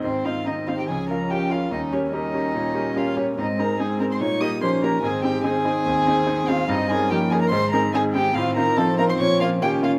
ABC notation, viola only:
X:1
M:4/4
L:1/8
Q:1/4=144
K:Ab
V:1 name="Viola"
C2 C2 D4 | D2 D6 | C2 C2 E2 D2 | C2 C6 |
C2 B,2 A,2 A,2 | C2 C4 D2 |]